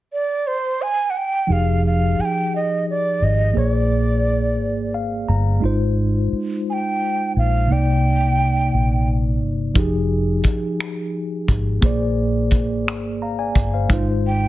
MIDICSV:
0, 0, Header, 1, 6, 480
1, 0, Start_track
1, 0, Tempo, 689655
1, 1033, Time_signature, 6, 3, 24, 8
1, 10079, End_track
2, 0, Start_track
2, 0, Title_t, "Bansuri"
2, 0, Program_c, 0, 73
2, 90, Note_on_c, 0, 74, 87
2, 328, Note_on_c, 0, 72, 86
2, 339, Note_off_c, 0, 74, 0
2, 572, Note_on_c, 0, 80, 102
2, 582, Note_off_c, 0, 72, 0
2, 767, Note_on_c, 0, 78, 64
2, 778, Note_off_c, 0, 80, 0
2, 816, Note_on_c, 0, 79, 93
2, 826, Note_off_c, 0, 78, 0
2, 1059, Note_on_c, 0, 77, 87
2, 1070, Note_off_c, 0, 79, 0
2, 1286, Note_off_c, 0, 77, 0
2, 1295, Note_on_c, 0, 77, 81
2, 1536, Note_on_c, 0, 80, 82
2, 1547, Note_off_c, 0, 77, 0
2, 1566, Note_on_c, 0, 79, 89
2, 1573, Note_off_c, 0, 80, 0
2, 1765, Note_off_c, 0, 79, 0
2, 1779, Note_on_c, 0, 75, 81
2, 1990, Note_off_c, 0, 75, 0
2, 2019, Note_on_c, 0, 74, 85
2, 2253, Note_on_c, 0, 75, 81
2, 2263, Note_off_c, 0, 74, 0
2, 2492, Note_on_c, 0, 73, 67
2, 2502, Note_off_c, 0, 75, 0
2, 2582, Note_off_c, 0, 73, 0
2, 2582, Note_on_c, 0, 74, 67
2, 3442, Note_off_c, 0, 74, 0
2, 4662, Note_on_c, 0, 80, 78
2, 4685, Note_on_c, 0, 79, 85
2, 4692, Note_off_c, 0, 80, 0
2, 5100, Note_off_c, 0, 79, 0
2, 5139, Note_on_c, 0, 77, 83
2, 5373, Note_on_c, 0, 79, 94
2, 5383, Note_off_c, 0, 77, 0
2, 6323, Note_off_c, 0, 79, 0
2, 9931, Note_on_c, 0, 79, 95
2, 10079, Note_off_c, 0, 79, 0
2, 10079, End_track
3, 0, Start_track
3, 0, Title_t, "Tine electric piano"
3, 0, Program_c, 1, 4
3, 1023, Note_on_c, 1, 53, 60
3, 1034, Note_on_c, 1, 63, 50
3, 1046, Note_on_c, 1, 67, 51
3, 1055, Note_on_c, 1, 68, 63
3, 1158, Control_c, 1, 64, 127
3, 2440, Note_off_c, 1, 53, 0
3, 2446, Note_off_c, 1, 63, 0
3, 2451, Note_off_c, 1, 67, 0
3, 2456, Note_off_c, 1, 68, 0
3, 2461, Note_on_c, 1, 58, 60
3, 2472, Note_on_c, 1, 68, 54
3, 2483, Control_c, 1, 64, 0
3, 2484, Note_on_c, 1, 72, 48
3, 2495, Note_on_c, 1, 74, 58
3, 2607, Control_c, 1, 64, 127
3, 3441, Note_on_c, 1, 77, 63
3, 3660, Note_off_c, 1, 77, 0
3, 3678, Note_on_c, 1, 82, 58
3, 3879, Note_off_c, 1, 58, 0
3, 3885, Note_off_c, 1, 68, 0
3, 3891, Note_off_c, 1, 72, 0
3, 3896, Note_off_c, 1, 74, 0
3, 3899, Note_off_c, 1, 82, 0
3, 3899, Note_on_c, 1, 56, 66
3, 3911, Note_on_c, 1, 63, 64
3, 3922, Control_c, 1, 64, 0
3, 3922, Note_on_c, 1, 65, 62
3, 3935, Note_on_c, 1, 72, 75
3, 4061, Control_c, 1, 64, 127
3, 5318, Note_off_c, 1, 56, 0
3, 5324, Note_off_c, 1, 63, 0
3, 5329, Note_off_c, 1, 65, 0
3, 5336, Note_off_c, 1, 72, 0
3, 5338, Note_on_c, 1, 48, 55
3, 5352, Note_on_c, 1, 58, 52
3, 5362, Control_c, 1, 64, 0
3, 5363, Note_on_c, 1, 63, 50
3, 5375, Note_on_c, 1, 74, 63
3, 5494, Control_c, 1, 64, 127
3, 6757, Note_off_c, 1, 48, 0
3, 6764, Note_off_c, 1, 58, 0
3, 6770, Note_off_c, 1, 63, 0
3, 6776, Note_off_c, 1, 74, 0
3, 6781, Note_on_c, 1, 53, 62
3, 6791, Note_on_c, 1, 63, 60
3, 6800, Control_c, 1, 64, 0
3, 6803, Note_on_c, 1, 67, 62
3, 6816, Note_on_c, 1, 68, 79
3, 6929, Control_c, 1, 64, 127
3, 8199, Note_off_c, 1, 53, 0
3, 8204, Note_off_c, 1, 63, 0
3, 8210, Note_off_c, 1, 67, 0
3, 8217, Note_off_c, 1, 68, 0
3, 8221, Note_on_c, 1, 58, 70
3, 8233, Note_on_c, 1, 68, 63
3, 8242, Control_c, 1, 64, 0
3, 8245, Note_on_c, 1, 72, 61
3, 8256, Note_on_c, 1, 74, 81
3, 8367, Control_c, 1, 64, 127
3, 9180, Note_off_c, 1, 72, 0
3, 9185, Note_off_c, 1, 74, 0
3, 9201, Note_on_c, 1, 82, 55
3, 9206, Note_on_c, 1, 77, 51
3, 9311, Note_off_c, 1, 82, 0
3, 9314, Note_off_c, 1, 77, 0
3, 9318, Note_on_c, 1, 80, 69
3, 9320, Note_on_c, 1, 74, 51
3, 9544, Note_off_c, 1, 80, 0
3, 9545, Note_off_c, 1, 74, 0
3, 9561, Note_on_c, 1, 77, 60
3, 9566, Note_on_c, 1, 72, 49
3, 9639, Note_off_c, 1, 58, 0
3, 9645, Note_off_c, 1, 68, 0
3, 9666, Note_on_c, 1, 56, 67
3, 9678, Note_on_c, 1, 63, 58
3, 9682, Control_c, 1, 64, 0
3, 9688, Note_on_c, 1, 65, 63
3, 9691, Note_off_c, 1, 72, 0
3, 9700, Note_on_c, 1, 72, 75
3, 9785, Note_off_c, 1, 77, 0
3, 9813, Control_c, 1, 64, 127
3, 10079, Note_off_c, 1, 56, 0
3, 10079, Note_off_c, 1, 63, 0
3, 10079, Note_off_c, 1, 65, 0
3, 10079, Note_off_c, 1, 72, 0
3, 10079, End_track
4, 0, Start_track
4, 0, Title_t, "Fingered electric bass"
4, 0, Program_c, 2, 33
4, 1042, Note_on_c, 2, 29, 78
4, 1489, Note_off_c, 2, 29, 0
4, 2241, Note_on_c, 2, 32, 73
4, 2453, Note_off_c, 2, 32, 0
4, 2481, Note_on_c, 2, 34, 88
4, 3197, Note_off_c, 2, 34, 0
4, 3197, Note_on_c, 2, 32, 82
4, 3647, Note_off_c, 2, 32, 0
4, 3682, Note_on_c, 2, 31, 70
4, 3894, Note_off_c, 2, 31, 0
4, 3920, Note_on_c, 2, 32, 86
4, 4369, Note_off_c, 2, 32, 0
4, 5125, Note_on_c, 2, 34, 68
4, 5335, Note_off_c, 2, 34, 0
4, 5362, Note_on_c, 2, 36, 77
4, 6050, Note_off_c, 2, 36, 0
4, 6084, Note_on_c, 2, 34, 66
4, 6562, Note_off_c, 2, 34, 0
4, 6562, Note_on_c, 2, 31, 62
4, 6774, Note_off_c, 2, 31, 0
4, 6796, Note_on_c, 2, 29, 79
4, 7247, Note_off_c, 2, 29, 0
4, 7999, Note_on_c, 2, 32, 73
4, 8212, Note_off_c, 2, 32, 0
4, 8233, Note_on_c, 2, 34, 86
4, 8959, Note_off_c, 2, 34, 0
4, 8959, Note_on_c, 2, 32, 77
4, 9408, Note_off_c, 2, 32, 0
4, 9438, Note_on_c, 2, 31, 83
4, 9652, Note_off_c, 2, 31, 0
4, 9678, Note_on_c, 2, 32, 86
4, 10079, Note_off_c, 2, 32, 0
4, 10079, End_track
5, 0, Start_track
5, 0, Title_t, "Muted fingered electric bass strokes"
5, 1524, Note_on_c, 9, 29, 40
5, 1593, Note_off_c, 9, 29, 0
5, 4400, Note_on_c, 9, 29, 39
5, 4470, Note_off_c, 9, 29, 0
5, 10079, End_track
6, 0, Start_track
6, 0, Title_t, "Drums"
6, 6789, Note_on_c, 9, 36, 85
6, 6789, Note_on_c, 9, 42, 58
6, 6858, Note_off_c, 9, 42, 0
6, 6859, Note_off_c, 9, 36, 0
6, 7265, Note_on_c, 9, 42, 71
6, 7270, Note_on_c, 9, 36, 66
6, 7334, Note_off_c, 9, 42, 0
6, 7340, Note_off_c, 9, 36, 0
6, 7520, Note_on_c, 9, 26, 93
6, 7521, Note_on_c, 9, 42, 62
6, 7590, Note_off_c, 9, 26, 0
6, 7591, Note_off_c, 9, 42, 0
6, 7993, Note_on_c, 9, 36, 80
6, 7997, Note_on_c, 9, 42, 54
6, 8062, Note_off_c, 9, 36, 0
6, 8067, Note_off_c, 9, 42, 0
6, 8228, Note_on_c, 9, 42, 57
6, 8230, Note_on_c, 9, 36, 97
6, 8298, Note_off_c, 9, 42, 0
6, 8299, Note_off_c, 9, 36, 0
6, 8707, Note_on_c, 9, 42, 66
6, 8712, Note_on_c, 9, 36, 68
6, 8777, Note_off_c, 9, 42, 0
6, 8782, Note_off_c, 9, 36, 0
6, 8966, Note_on_c, 9, 26, 91
6, 8967, Note_on_c, 9, 42, 65
6, 9036, Note_off_c, 9, 26, 0
6, 9036, Note_off_c, 9, 42, 0
6, 9434, Note_on_c, 9, 36, 86
6, 9437, Note_on_c, 9, 42, 56
6, 9503, Note_off_c, 9, 36, 0
6, 9507, Note_off_c, 9, 42, 0
6, 9672, Note_on_c, 9, 36, 95
6, 9674, Note_on_c, 9, 42, 60
6, 9742, Note_off_c, 9, 36, 0
6, 9744, Note_off_c, 9, 42, 0
6, 10079, End_track
0, 0, End_of_file